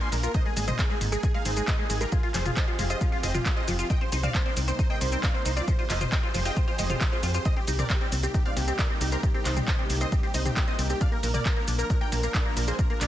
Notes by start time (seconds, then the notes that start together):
Already playing: A#3 D4 F4
0.01 A#3 G#5 C6, closed hi-hat
0.12 A#1 G#3 A#4, open hi-hat, shaker
0.23 F4 A#4, closed hi-hat, shaker
0.34 G#2 D#4 G#4 C5 D#5, kick, closed hi-hat, shaker
0.45 G#3 G#4, closed hi-hat
0.56 G#1 G#3 G#4, open hi-hat, shaker
0.67 G#3 C5 D#5, mid tom, shaker
0.79 C4 G#4, kick, clap, closed hi-hat, shaker
0.90 G#3 G#4, closed hi-hat
1.01 G#1 G#2, open hi-hat, shaker
1.12 G#3 G#4, closed hi-hat, shaker
1.23 G#3 G#4, kick, closed hi-hat, shaker
1.34 G#3 G#4 F5, closed hi-hat
1.45 G#1 C4 G#4, open hi-hat, shaker
1.56 G#3 G#4, closed hi-hat, shaker
1.67 G#2 C5 D#5, kick, clap, closed hi-hat, shaker
1.79 G#3 G#4, closed hi-hat
1.89 G#1 G#3 G#4, open hi-hat, shaker
2.00 G#3 G4 A#4, closed hi-hat, shaker
2.12 F3 G#3 C4 F4 G4, kick, closed hi-hat, shaker
2.23 F4, closed hi-hat
2.34 F1 F3 G#4 C5, clap, open hi-hat, shaker
2.45 F4, closed hi-hat, mid tom, shaker
2.57 F4 C5 D#5, kick, clap, closed hi-hat, shaker
2.68 F4, closed hi-hat
2.79 F1 G#3 F4, open hi-hat, shaker
2.90 F4 C5 D#5, closed hi-hat, shaker
3.01 F3 F4, kick, closed hi-hat, shaker
3.12 F4, closed hi-hat
3.23 F1 F4 C5 D#5, open hi-hat, shaker
3.34 F4, mid tom, shaker
3.45 G#3 F4, kick, clap, closed hi-hat, shaker
3.57 F4 C5 D#5, closed hi-hat
3.68 F1 F3 F4, open hi-hat, shaker
3.79 F4, closed hi-hat, shaker
3.90 C3 G3 A#3 C4 D#4 D#5 G5, kick, closed hi-hat, shaker
4.01 C4 C5, closed hi-hat
4.12 C2 D#4 C5, open hi-hat, shaker
4.23 C4 D5 F5, closed hi-hat, mid tom, shaker
4.34 C3 C5, kick, clap, closed hi-hat, shaker
4.46 C4 C5, closed hi-hat
4.57 C2 C4, open hi-hat, shaker
4.68 C4 C5, closed hi-hat, shaker
4.79 D#4 C5, kick, closed hi-hat, shaker
4.90 C4 D#5 G5, closed hi-hat
5.01 C2 C3 C5, open hi-hat, shaker
5.12 C4 C5, closed hi-hat, shaker
5.23 C4 D5 F5, kick, clap, closed hi-hat, shaker
5.34 C4 C5, closed hi-hat
5.45 C2 D#4 C5, open hi-hat, shaker
5.56 C4 F4 D5, closed hi-hat, shaker
5.67 F3 C4 G4 G#4 C5, kick, closed hi-hat, shaker
5.78 F4 C5, closed hi-hat
5.90 F1 F4 C5 D#5, clap, open hi-hat, shaker
6.01 F4 C5, closed hi-hat, mid tom, shaker
6.12 G#3 D#5 G5, kick, clap, closed hi-hat, shaker
6.23 F4 C5, closed hi-hat
6.34 F1 F3 C5, open hi-hat, shaker
6.45 F4 D#5 G5, open hi-hat, shaker
6.56 F4 C5, kick, closed hi-hat, shaker
6.68 F4 C5, closed hi-hat
6.79 F1 G#3 C5 D#5, open hi-hat, shaker
6.90 F4 C5, closed hi-hat, mid tom, shaker
7.01 F3 C5, kick, clap, closed hi-hat, shaker
7.12 F4 G#4 C5, closed hi-hat
7.23 F2 F4 C5, open hi-hat, shaker
7.34 F4 C5, closed hi-hat, shaker
7.45 C3 G3 A#3 C4 D#4 C5 D#5, kick, closed hi-hat, shaker
7.56 C4 G4, closed hi-hat
7.68 C2 D#4 G4, open hi-hat, shaker
7.79 C4 A#4 D5, closed hi-hat, mid tom, shaker
7.90 C3 G4, kick, clap, closed hi-hat, shaker
8.01 C4 G4, closed hi-hat
8.12 C2 C4, open hi-hat, shaker
8.23 C4 G4, closed hi-hat, shaker
8.34 D#4 G4, kick, closed hi-hat, shaker
8.45 C4 D5 F5, closed hi-hat
8.56 C2 C3 G4, open hi-hat, shaker
8.68 C4 G4, closed hi-hat, shaker
8.79 C4 A#4 D5, kick, clap, closed hi-hat, shaker
8.90 C4 G4, closed hi-hat
9.01 C2 D#4 G4, open hi-hat, shaker
9.12 C4 G4 A#4, closed hi-hat, shaker
9.23 C3 G4, kick, closed hi-hat, shaker
9.34 C4 G4, closed hi-hat
9.45 C2 C4 D#4 C5, clap, open hi-hat, shaker
9.56 C4 G4, closed hi-hat, mid tom, shaker
9.68 D#4 C5 D#5, kick, clap, closed hi-hat, shaker
9.79 C4 G4, closed hi-hat
9.90 C2 C3 G4, open hi-hat, shaker
10.01 C4 C5 D#5, shaker
10.12 C4 G4, kick, closed hi-hat, shaker
10.23 C4 G4, closed hi-hat
10.34 C2 D#4 C5 D#5, open hi-hat, shaker
10.45 C4 G4, closed hi-hat, mid tom, shaker
10.56 C3 G4, kick, clap, closed hi-hat, shaker
10.67 C4 C5 D#5, closed hi-hat
10.79 C2 C4 G4, open hi-hat, shaker
10.90 C4 G4, closed hi-hat, shaker
11.01 F3 D4 D5 F5, kick, closed hi-hat, shaker
11.12 A#3 A#4, closed hi-hat
11.23 A#1 A#2 A#4, open hi-hat, shaker
11.34 A#3 A#4 D5, closed hi-hat, mid tom, shaker
11.45 A#3 A#4, kick, clap, closed hi-hat, shaker
11.56 A#3 A#4, closed hi-hat
11.68 A#1 D4, open hi-hat, shaker
11.78 A#3 A#4, closed hi-hat, shaker
11.90 A#2 A#4, kick, closed hi-hat, shaker
12.01 A#3 A#4 G5, closed hi-hat
12.12 A#1 A#3 A#4, open hi-hat, shaker
12.23 A#3 A#4, closed hi-hat, shaker
12.34 D4 A#4 D5, kick, clap, closed hi-hat, shaker
12.45 A#3 A#4, closed hi-hat
12.56 A#1 A#2 A#4, open hi-hat, shaker
12.68 A#3 G#4 C5, closed hi-hat, shaker
12.79 A#3 A#4, kick, closed hi-hat, shaker
12.90 A#3 A#4, closed hi-hat
13.01 A#1 D4 A#4 D5, clap, open hi-hat, shaker